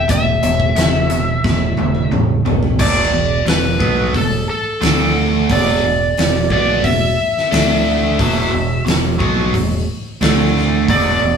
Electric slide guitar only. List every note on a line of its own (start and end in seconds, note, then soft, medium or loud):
0.12 2.09 E5 loud
2.81 3.45 D5 medium
3.49 4.13 B4 medium
4.17 4.48 A4 medium
4.50 5.47 A4 medium
5.52 6.49 D5 medium
6.52 6.84 D5 medium
6.84 8.83 E5 medium
10.90 11.37 D5 loud